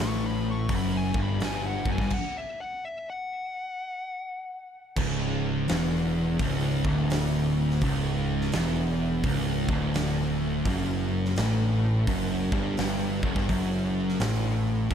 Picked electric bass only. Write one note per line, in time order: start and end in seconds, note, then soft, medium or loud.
0.00 0.66 A1 loud
0.69 1.12 F#1 loud
1.15 1.39 G1 loud
1.42 1.84 G1 loud
1.85 1.98 F#1 loud
1.98 2.11 G1 loud
4.96 5.64 C#1 loud
5.70 6.36 E1 loud
6.40 6.82 C#1 medium
6.85 7.78 D1 loud
7.82 8.49 C#1 loud
8.55 9.21 E1 loud
9.24 9.66 C#1 loud
9.69 10.62 D1 loud
10.66 11.33 F#1 loud
11.38 12.04 A1 loud
12.08 12.50 F#1 medium
12.52 12.76 G1 loud
12.79 13.20 G1 loud
13.23 13.35 F#1 loud
13.36 13.48 G1 loud
13.49 14.16 F#1 loud
14.20 14.87 A1 loud
14.90 14.94 F#1 medium